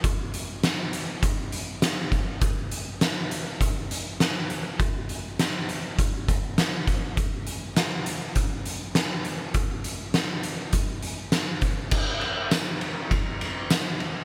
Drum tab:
CC |--------|--------|--------|--------|
RD |--------|--------|--------|--------|
HH |xxxxxxxx|xxxxxxxx|xxxxxxxx|xxxxxxxx|
TB |--------|--------|--------|--------|
SD |--o---o-|--o---o-|--o---o-|--o---o-|
BD |o---o--o|o---o---|o---oo-o|o---o---|

CC |--------|x-------|
RD |--------|-xxxxxxx|
HH |xxxxxxxx|--------|
TB |--------|--x---x-|
SD |--o---o-|--o---o-|
BD |o---o--o|o---o---|